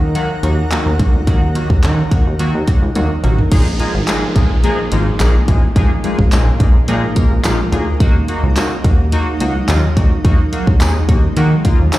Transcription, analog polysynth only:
0.15 D#3 F#3 A#3 F#4
0.43 D#3 F#3 A#3 F#4
0.71 D#3 F#3 A#3 F#4
0.99 D#3 F#3 A#3 F#4
1.27 D#3 F#3 A#3 F#4
1.55 D#3 F#3 A#3 F#4
1.83 D#3 F#3 A#3 F#4
2.11 D#3 F#3 A#3 F#4
2.39 D#3 F#3 A#3 F#4
2.67 D#3 F#3 A#3 F#4
2.95 D#3 F#3 A#3 F#4
3.23 D#3 F#3 A#3 F#4
3.51 F3 G#3 A#3 D#4 G#4
3.79 F3 G#3 A#3 D#4 G#4
4.07 F3 G#3 A#3 D#4 G#4
4.35 F3 G#3 A#3 D#4 G#4
4.64 F3 G#3 A#3 D#4 G#4
4.92 F3 G#3 A#3 D#4 F4
5.20 F3 G#3 A#3 D#4 G#4
5.48 F3 G#3 A#3 D#4 G#4
5.76 F3 G#3 A#3 D#4 G#4
6.04 F3 G#3 A#3 D#4 G#4
6.32 F3 G#3 A#3 D#4 G#4
6.60 F3 G#3 A#3 D#4 G#4
6.88 F3 G#3 A#3 D#4 G#4
7.16 F3 G#3 A#3 D#4 A#4
7.44 F3 G#3 A#3 D#4 F4
7.72 F3 G#3 A#3 D#4 G#4
8.00 A#3 D#4 F#4
8.28 A#3 D#4 F#4
8.56 A#3 D#4 F#4
8.84 A#3 D#4 F#4
9.12 A#3 D#4 F#4
9.40 A#3 D#4 F#4
9.68 A#3 D#4 F4
9.96 A#3 D#4 F#4
10.24 A#3 D#4 F#4
10.52 A#3 D#4 F#4
10.80 A#3 D#4 G#4
11.08 A#3 D#4 F#4
11.36 A#3 D#4 F#4
11.64 A#3 D#4 F4
11.93 A#3 D#4 F#4

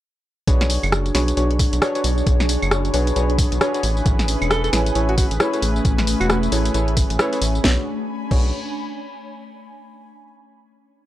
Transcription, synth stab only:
0.48 D4 F#4 G#4 B4 C#5
1.15 D4 F#4 G#4 B4 C#5
1.37 D4 F#4 G#4 B4 C#5
1.82 D4 F#4 G#4 B4 C#5
1.95 D4 F#4 G#4 B4 C#5
2.94 D4 F#4 G#4 B4 C#5
3.16 D4 F#4 G#4 B4 C#5
3.61 D4 F#4 G#4 B4 C#5
3.74 D4 F#4 G#4 B4 C#5
4.73 E4 G#4 A4 B4 C#5
4.95 E4 G#4 A4 B4 C#5
5.40 E4 G#4 A4 B4 C#5
5.54 E4 G#4 A4 B4 C#5
6.52 E4 G#4 A4 B4 C#5
6.74 E4 G#4 A4 B4 C#5
7.19 E4 G#4 A4 B4 C#5
7.33 E4 G#4 A4 B4 C#5
7.64 D4 F#4 G#4 B4 C#5
8.31 D4 F#4 G#4 B4 C#5

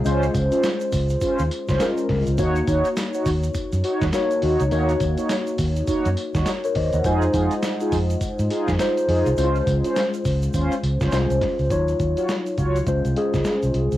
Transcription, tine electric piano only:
0.05 G#3 C#4 F4 C5
1.80 G#3 C#4 F4 A#4
2.38 A#3 D#4 F#4 C#5
4.13 A#3 D#4 F#4 C#5
4.71 A#3 D#4 F#4 C#5
6.64 A#4 C#5
6.76 C5 D#5
6.94 D#5 F#5
7.05 G#3 D#4 F4 C5
8.79 G#3 D#4 F4 C5
9.37 G#3 C#4 E4 C5
9.44 F4
11.12 G#3 C#4 F4 C5
11.70 F#3 D#4 F4 C#5
12.87 G#3 C#4 F4 C5
13.16 G#3 C#4 F4 G#4

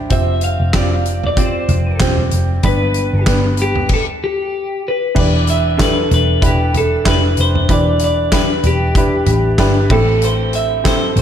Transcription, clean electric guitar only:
0.13 E5
0.44 F5
1.27 D5
1.40 C5
2.66 B4
3.62 G4
3.94 A4
4.24 G4
4.88 B4
5.19 D5
5.50 E5
5.82 B4
6.14 B4
6.46 G4
6.78 A4
7.09 B4
7.41 C5
7.72 D5
8.04 D5
8.35 B4
8.67 G4
9.92 A4
10.25 C5
10.55 E5
10.88 C5

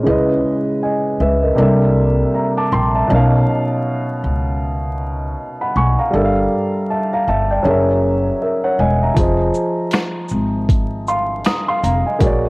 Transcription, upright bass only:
0.06 C#2
1.20 C#2
1.58 C2
2.72 A#1
3.10 B1
4.24 C#2
5.76 B1
6.14 G1
7.27 G1
7.65 F#1
8.79 E1
9.17 F1
10.31 G#1
11.83 F1
12.21 A#1

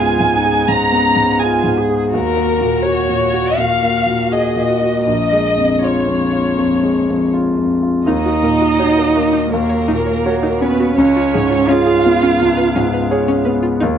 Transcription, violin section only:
Already playing: G#5
0.69 A#5
1.39 G#5
2.13 A#4
2.83 C#5
3.56 F5
4.30 D#5
5.04 D#5
5.82 C#5
8.06 D#5
9.53 A#4
10.62 B4
10.98 C#5
11.70 F5

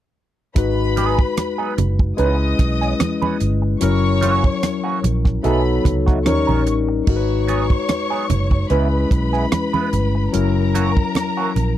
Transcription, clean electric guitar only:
0.96 F#3 B3 D#4 G#4
1.37 muted clean electric guitar stroke
1.58 F#3 B3 D#4 G#4
1.78 muted clean electric guitar stroke
2.00 muted clean electric guitar stroke
2.18 E3 B3 C#4 B4
2.59 muted clean electric guitar stroke
2.81 E3 B3 C#4 G#4
2.99 muted clean electric guitar stroke
3.22 E3 B3 C#4 B4
3.41 muted clean electric guitar stroke
3.62 muted clean electric guitar stroke
4.21 E3 A#3 C#4 F#4
4.62 muted clean electric guitar stroke
4.84 E3 A#3 C#4 F#4
5.03 muted clean electric guitar stroke
5.25 muted clean electric guitar stroke
5.43 F#3 A3 D#4 G#4
5.84 muted clean electric guitar stroke
6.06 F#3 A3 D#4 F#4
6.25 muted clean electric guitar stroke
6.47 D#3 A#3 C#4 A#4
6.66 muted clean electric guitar stroke
6.89 muted clean electric guitar stroke
7.47 F#3 B3 D#4 G#4
7.88 muted clean electric guitar stroke
8.10 F#3 B3 D#4 G#4
8.30 muted clean electric guitar stroke
8.51 muted clean electric guitar stroke
8.70 G#3 B3 E4 B4
9.11 muted clean electric guitar stroke
9.33 G#3 B3 E4 G#4
9.52 muted clean electric guitar stroke
9.73 G#3 B3 E4 B4
9.93 muted clean electric guitar stroke
10.15 muted clean electric guitar stroke
10.74 E3 A#3 C#4 F#4
11.15 muted clean electric guitar stroke
11.37 E3 A#3 C#4 F#4
11.56 muted clean electric guitar stroke

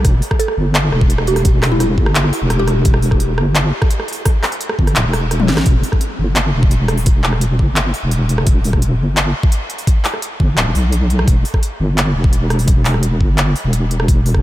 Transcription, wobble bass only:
0.05 E1
0.57 G1
0.93 E1
1.98 G1
2.42 E1
3.38 G1
4.79 G1
4.96 D1
5.05 E1
5.49 A1
5.66 E1
6.19 G1
6.54 E1
7.59 G1
8.03 E1
8.99 G1
10.40 G1
10.57 D1
10.66 E1
10.75 B1
11.28 E1
11.80 G1
12.15 E1
13.21 G1
13.64 E1

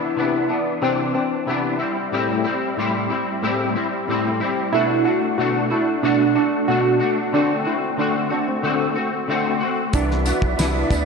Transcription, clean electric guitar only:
Already playing: E3 B3 D4
0.16 C3 E3 B3 D4
0.49 E3 B3 D4
0.81 C3 E3 D4
1.14 E3 D4
1.46 C3 E3 B3 D4
1.79 G3 C4 E4
2.12 A2 G3 C4 E4
2.44 G3 C4 E4
2.77 A2 G3 C4 E4
3.09 G3 C4 E4
3.42 A2 G3 C4 E4
3.75 G3 C4 E4
4.08 A2 G3 C4 E4
4.40 G3 C4 E4
4.72 B2 A3 D4 F#4
5.05 A3 D4 F#4
5.38 B2 A3 D4 F#4
5.70 A3 D4 F#4
6.02 B2 A3 D4 F#4
6.35 A3 D4 F#4
6.68 B2 A3 D4 F#4
7.00 A3 D4 F#4
7.32 D3 A3 C4 F#4
7.64 A3 C4 F#4
7.97 D3 A3 C4 F#4
8.30 A3 C4 F#4
8.62 D3 A3 C4 F#4
8.95 A3 C4 F#4
9.27 D3 A3 C4 F#4
9.60 A3 C4 F#4
9.93 C3 E3 B3 D4
10.25 E3 B3 D4
10.57 C3 E3 B3 D4
10.89 E3 B3 D4

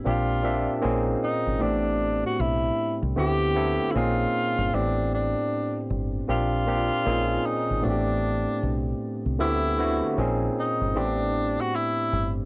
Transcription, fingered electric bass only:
0.06 A#1
0.85 A#1
1.47 G#1
1.62 A1
2.40 B1
3.03 C2
3.17 D2
3.95 A#1
4.58 G1
4.73 A1
5.90 G1
6.29 A#1
7.06 A#1
7.70 G#1
7.85 A1
8.63 B1
9.26 C2
9.40 D2
10.18 A#1
10.81 G1
10.96 A1
12.13 G1

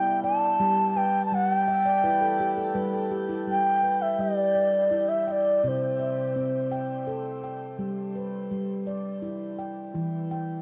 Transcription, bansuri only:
Already playing: G5
0.23 A5
0.97 G5
1.25 A5
1.34 F#5
1.53 G5
3.51 G5
4.02 E5
4.21 D5
5.09 E5
5.28 D5 E5
5.64 C5 D5

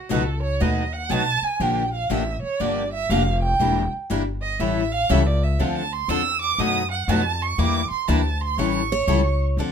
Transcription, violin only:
Already playing: F#4
0.11 A4
0.42 C#5
0.61 D#5
0.93 F#5
1.11 A5
1.43 G#5
1.61 G5
1.93 F5
2.11 E5
2.42 C#5
2.60 D5
2.93 E5
3.10 F5
3.42 G5
4.42 D#5
4.59 E5
4.92 F5
5.10 E5
5.26 D5
5.43 E5
5.61 F5
5.75 A5
5.92 C6
6.09 E6
6.41 D6
6.59 D#6
6.91 F#5
7.09 A5
7.42 C#6
7.59 D6
7.90 C6
8.08 A5
8.41 C6
8.59 C#6

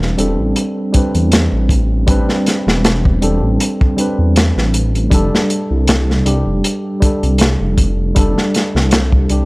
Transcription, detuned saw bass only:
Already playing: E1
0.18 E1
0.39 A1
1.15 E2
1.53 A1
2.08 A1
2.67 E1
3.22 E1
3.42 A1
4.19 E2
4.57 A1
5.11 F1
5.71 C2
6.26 C2
6.47 F1
7.23 C2
7.61 F1
8.17 F1
8.75 C2
9.30 C2

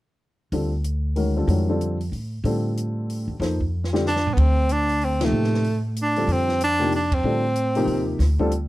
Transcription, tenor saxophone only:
4.08 D4
4.34 B3
4.39 C4
4.72 D4
5.05 C4
5.25 A3
6.02 D4
6.32 C4
6.63 D4
6.96 D4
7.14 C4

